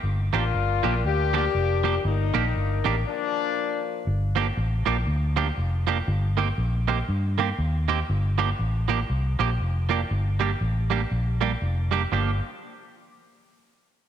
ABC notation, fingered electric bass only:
X:1
M:4/4
L:1/8
Q:"Swing" 1/4=119
K:Gm
V:1 name="Fingered electric bass" clef=bass
G,,, A,,, G,,, B,,, D,,2 F,,,2 | G,,, B,,, G,,, A,,, z4 | G,,,2 A,,, B,,, D,,2 F,,,2 | G,,,2 B,,,2 G,,2 E,,2 |
G,,,2 A,,,2 C,, B,,, F,,,2 | G,,,2 A,,,2 B,,,2 F,,,2 | G,,, z6 z |]